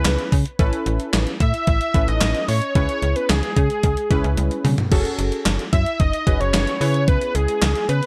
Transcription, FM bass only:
0, 0, Header, 1, 2, 480
1, 0, Start_track
1, 0, Key_signature, 4, "minor"
1, 0, Tempo, 540541
1, 526, Time_signature, 4, 2, 24, 8
1, 7158, End_track
2, 0, Start_track
2, 0, Title_t, "FM bass"
2, 0, Program_c, 0, 39
2, 46, Note_on_c, 0, 37, 99
2, 156, Note_off_c, 0, 37, 0
2, 286, Note_on_c, 0, 49, 104
2, 396, Note_off_c, 0, 49, 0
2, 526, Note_on_c, 0, 33, 112
2, 636, Note_off_c, 0, 33, 0
2, 766, Note_on_c, 0, 33, 105
2, 876, Note_off_c, 0, 33, 0
2, 1006, Note_on_c, 0, 33, 103
2, 1116, Note_off_c, 0, 33, 0
2, 1247, Note_on_c, 0, 45, 97
2, 1356, Note_off_c, 0, 45, 0
2, 1487, Note_on_c, 0, 33, 100
2, 1596, Note_off_c, 0, 33, 0
2, 1726, Note_on_c, 0, 33, 102
2, 1836, Note_off_c, 0, 33, 0
2, 1846, Note_on_c, 0, 33, 92
2, 1956, Note_off_c, 0, 33, 0
2, 1966, Note_on_c, 0, 33, 114
2, 2076, Note_off_c, 0, 33, 0
2, 2206, Note_on_c, 0, 45, 100
2, 2316, Note_off_c, 0, 45, 0
2, 2445, Note_on_c, 0, 37, 115
2, 2555, Note_off_c, 0, 37, 0
2, 2685, Note_on_c, 0, 37, 100
2, 2795, Note_off_c, 0, 37, 0
2, 2926, Note_on_c, 0, 37, 105
2, 3036, Note_off_c, 0, 37, 0
2, 3166, Note_on_c, 0, 49, 110
2, 3276, Note_off_c, 0, 49, 0
2, 3407, Note_on_c, 0, 37, 109
2, 3516, Note_off_c, 0, 37, 0
2, 3646, Note_on_c, 0, 37, 110
2, 3756, Note_off_c, 0, 37, 0
2, 3765, Note_on_c, 0, 37, 105
2, 3875, Note_off_c, 0, 37, 0
2, 3886, Note_on_c, 0, 37, 95
2, 3996, Note_off_c, 0, 37, 0
2, 4125, Note_on_c, 0, 49, 102
2, 4235, Note_off_c, 0, 49, 0
2, 4365, Note_on_c, 0, 30, 114
2, 4476, Note_off_c, 0, 30, 0
2, 4605, Note_on_c, 0, 30, 97
2, 4715, Note_off_c, 0, 30, 0
2, 4844, Note_on_c, 0, 30, 102
2, 4955, Note_off_c, 0, 30, 0
2, 5086, Note_on_c, 0, 42, 96
2, 5196, Note_off_c, 0, 42, 0
2, 5326, Note_on_c, 0, 30, 106
2, 5436, Note_off_c, 0, 30, 0
2, 5566, Note_on_c, 0, 30, 99
2, 5676, Note_off_c, 0, 30, 0
2, 5685, Note_on_c, 0, 30, 98
2, 5795, Note_off_c, 0, 30, 0
2, 5805, Note_on_c, 0, 30, 97
2, 5915, Note_off_c, 0, 30, 0
2, 6045, Note_on_c, 0, 49, 105
2, 6375, Note_off_c, 0, 49, 0
2, 6526, Note_on_c, 0, 37, 97
2, 6636, Note_off_c, 0, 37, 0
2, 6766, Note_on_c, 0, 37, 106
2, 6876, Note_off_c, 0, 37, 0
2, 7005, Note_on_c, 0, 49, 102
2, 7115, Note_off_c, 0, 49, 0
2, 7158, End_track
0, 0, End_of_file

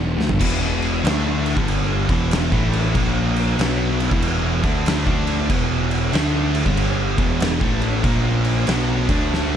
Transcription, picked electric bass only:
0, 0, Header, 1, 2, 480
1, 0, Start_track
1, 0, Key_signature, 1, "minor"
1, 0, Tempo, 636943
1, 303, Time_signature, 4, 2, 24, 8
1, 7209, End_track
2, 0, Start_track
2, 0, Title_t, "Picked electric bass"
2, 0, Program_c, 0, 34
2, 0, Note_on_c, 0, 28, 98
2, 111, Note_off_c, 0, 28, 0
2, 132, Note_on_c, 0, 38, 96
2, 212, Note_off_c, 0, 38, 0
2, 216, Note_on_c, 0, 31, 92
2, 296, Note_off_c, 0, 31, 0
2, 307, Note_on_c, 0, 28, 90
2, 756, Note_off_c, 0, 28, 0
2, 784, Note_on_c, 0, 38, 92
2, 1152, Note_off_c, 0, 38, 0
2, 1182, Note_on_c, 0, 31, 103
2, 1549, Note_off_c, 0, 31, 0
2, 1578, Note_on_c, 0, 28, 93
2, 1879, Note_off_c, 0, 28, 0
2, 1898, Note_on_c, 0, 33, 98
2, 2201, Note_off_c, 0, 33, 0
2, 2224, Note_on_c, 0, 34, 94
2, 2675, Note_off_c, 0, 34, 0
2, 2699, Note_on_c, 0, 35, 99
2, 3069, Note_off_c, 0, 35, 0
2, 3100, Note_on_c, 0, 28, 99
2, 3468, Note_off_c, 0, 28, 0
2, 3494, Note_on_c, 0, 38, 106
2, 3796, Note_off_c, 0, 38, 0
2, 3818, Note_on_c, 0, 38, 95
2, 4120, Note_off_c, 0, 38, 0
2, 4141, Note_on_c, 0, 28, 94
2, 4592, Note_off_c, 0, 28, 0
2, 4621, Note_on_c, 0, 38, 95
2, 4989, Note_off_c, 0, 38, 0
2, 5019, Note_on_c, 0, 31, 100
2, 5386, Note_off_c, 0, 31, 0
2, 5410, Note_on_c, 0, 28, 103
2, 5713, Note_off_c, 0, 28, 0
2, 5738, Note_on_c, 0, 33, 93
2, 6039, Note_off_c, 0, 33, 0
2, 6058, Note_on_c, 0, 34, 95
2, 6509, Note_off_c, 0, 34, 0
2, 6540, Note_on_c, 0, 35, 89
2, 6829, Note_off_c, 0, 35, 0
2, 6850, Note_on_c, 0, 38, 91
2, 7209, Note_off_c, 0, 38, 0
2, 7209, End_track
0, 0, End_of_file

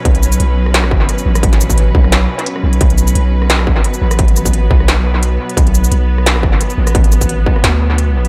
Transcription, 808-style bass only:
0, 0, Header, 1, 2, 480
1, 0, Start_track
1, 0, Tempo, 344828
1, 72, Time_signature, 4, 2, 24, 8
1, 11531, End_track
2, 0, Start_track
2, 0, Title_t, "808-style bass"
2, 0, Program_c, 0, 38
2, 71, Note_on_c, 0, 35, 93
2, 534, Note_off_c, 0, 35, 0
2, 554, Note_on_c, 0, 35, 91
2, 1495, Note_off_c, 0, 35, 0
2, 1749, Note_on_c, 0, 33, 96
2, 2693, Note_off_c, 0, 33, 0
2, 2713, Note_on_c, 0, 35, 99
2, 3175, Note_off_c, 0, 35, 0
2, 3668, Note_on_c, 0, 35, 90
2, 3893, Note_off_c, 0, 35, 0
2, 3911, Note_on_c, 0, 35, 99
2, 4374, Note_off_c, 0, 35, 0
2, 4389, Note_on_c, 0, 35, 94
2, 5057, Note_off_c, 0, 35, 0
2, 5057, Note_on_c, 0, 34, 94
2, 5333, Note_off_c, 0, 34, 0
2, 5589, Note_on_c, 0, 33, 89
2, 6533, Note_off_c, 0, 33, 0
2, 6550, Note_on_c, 0, 35, 98
2, 7494, Note_off_c, 0, 35, 0
2, 7754, Note_on_c, 0, 35, 99
2, 8215, Note_off_c, 0, 35, 0
2, 8233, Note_on_c, 0, 35, 97
2, 9175, Note_off_c, 0, 35, 0
2, 9434, Note_on_c, 0, 33, 94
2, 10376, Note_off_c, 0, 33, 0
2, 10631, Note_on_c, 0, 38, 98
2, 11531, Note_off_c, 0, 38, 0
2, 11531, End_track
0, 0, End_of_file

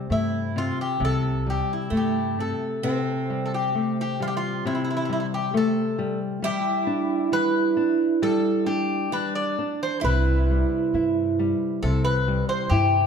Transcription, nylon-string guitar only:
0, 0, Header, 1, 2, 480
1, 0, Start_track
1, 0, Key_signature, 0, "major"
1, 0, Tempo, 909091
1, 530, Time_signature, 2, 2, 24, 8
1, 2458, Tempo, 887574
1, 4378, Tempo, 906344
1, 5818, Tempo, 881057
1, 6985, End_track
2, 0, Start_track
2, 0, Title_t, "Nylon-string guitar"
2, 0, Program_c, 0, 24
2, 0, Note_on_c, 0, 48, 71
2, 52, Note_on_c, 0, 57, 51
2, 283, Note_off_c, 0, 57, 0
2, 289, Note_off_c, 0, 48, 0
2, 295, Note_on_c, 0, 48, 54
2, 522, Note_off_c, 0, 48, 0
2, 528, Note_on_c, 0, 48, 66
2, 773, Note_on_c, 0, 55, 52
2, 1006, Note_off_c, 0, 55, 0
2, 1014, Note_on_c, 0, 57, 53
2, 1248, Note_off_c, 0, 57, 0
2, 1254, Note_off_c, 0, 48, 0
2, 1261, Note_on_c, 0, 48, 41
2, 1492, Note_off_c, 0, 48, 0
2, 1498, Note_on_c, 0, 48, 63
2, 1742, Note_on_c, 0, 55, 51
2, 1976, Note_off_c, 0, 55, 0
2, 1979, Note_on_c, 0, 57, 54
2, 2213, Note_off_c, 0, 57, 0
2, 2219, Note_on_c, 0, 55, 53
2, 2438, Note_off_c, 0, 48, 0
2, 2449, Note_off_c, 0, 55, 0
2, 2458, Note_on_c, 0, 48, 71
2, 2695, Note_on_c, 0, 55, 60
2, 2931, Note_off_c, 0, 55, 0
2, 2936, Note_on_c, 0, 57, 59
2, 3171, Note_off_c, 0, 57, 0
2, 3177, Note_on_c, 0, 55, 61
2, 3397, Note_off_c, 0, 48, 0
2, 3408, Note_off_c, 0, 55, 0
2, 3414, Note_on_c, 0, 55, 71
2, 3655, Note_on_c, 0, 62, 63
2, 3888, Note_off_c, 0, 62, 0
2, 3892, Note_off_c, 0, 55, 0
2, 3899, Note_on_c, 0, 55, 58
2, 4131, Note_off_c, 0, 55, 0
2, 4141, Note_on_c, 0, 62, 59
2, 4373, Note_off_c, 0, 62, 0
2, 4387, Note_on_c, 0, 55, 81
2, 4621, Note_on_c, 0, 62, 61
2, 4852, Note_off_c, 0, 62, 0
2, 4857, Note_off_c, 0, 55, 0
2, 4864, Note_on_c, 0, 55, 54
2, 5095, Note_off_c, 0, 55, 0
2, 5109, Note_on_c, 0, 62, 55
2, 5338, Note_off_c, 0, 62, 0
2, 5351, Note_on_c, 0, 48, 65
2, 5596, Note_on_c, 0, 55, 53
2, 5819, Note_off_c, 0, 55, 0
2, 5829, Note_on_c, 0, 64, 53
2, 6059, Note_off_c, 0, 64, 0
2, 6073, Note_on_c, 0, 55, 60
2, 6286, Note_off_c, 0, 48, 0
2, 6302, Note_off_c, 0, 55, 0
2, 6314, Note_on_c, 0, 48, 77
2, 6556, Note_on_c, 0, 55, 59
2, 6780, Note_off_c, 0, 55, 0
2, 6794, Note_on_c, 0, 64, 61
2, 6985, Note_off_c, 0, 48, 0
2, 6985, Note_off_c, 0, 64, 0
2, 6985, End_track
0, 0, End_of_file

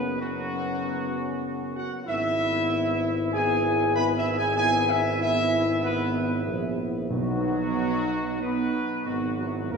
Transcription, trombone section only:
0, 0, Header, 1, 2, 480
1, 0, Start_track
1, 0, Key_signature, 5, "major"
1, 0, Tempo, 623053
1, 1606, Time_signature, 4, 2, 24, 8
1, 4491, Tempo, 637620
1, 5931, Tempo, 657174
1, 7413, End_track
2, 0, Start_track
2, 0, Title_t, "Trombone section"
2, 0, Program_c, 0, 61
2, 0, Note_on_c, 0, 59, 81
2, 130, Note_off_c, 0, 59, 0
2, 162, Note_on_c, 0, 54, 85
2, 1355, Note_on_c, 0, 66, 89
2, 1362, Note_off_c, 0, 54, 0
2, 1583, Note_off_c, 0, 66, 0
2, 1590, Note_on_c, 0, 64, 102
2, 2557, Note_off_c, 0, 64, 0
2, 2567, Note_on_c, 0, 68, 108
2, 3014, Note_off_c, 0, 68, 0
2, 3050, Note_on_c, 0, 71, 107
2, 3195, Note_off_c, 0, 71, 0
2, 3201, Note_on_c, 0, 64, 86
2, 3350, Note_off_c, 0, 64, 0
2, 3356, Note_on_c, 0, 68, 97
2, 3494, Note_off_c, 0, 68, 0
2, 3503, Note_on_c, 0, 68, 99
2, 3736, Note_off_c, 0, 68, 0
2, 3753, Note_on_c, 0, 64, 94
2, 3978, Note_off_c, 0, 64, 0
2, 3988, Note_on_c, 0, 64, 97
2, 4451, Note_off_c, 0, 64, 0
2, 4487, Note_on_c, 0, 59, 93
2, 4938, Note_off_c, 0, 59, 0
2, 5450, Note_on_c, 0, 54, 111
2, 6388, Note_off_c, 0, 54, 0
2, 6428, Note_on_c, 0, 59, 87
2, 6869, Note_off_c, 0, 59, 0
2, 6901, Note_on_c, 0, 54, 72
2, 7006, Note_off_c, 0, 54, 0
2, 7135, Note_on_c, 0, 54, 68
2, 7355, Note_off_c, 0, 54, 0
2, 7370, Note_on_c, 0, 58, 87
2, 7413, Note_off_c, 0, 58, 0
2, 7413, End_track
0, 0, End_of_file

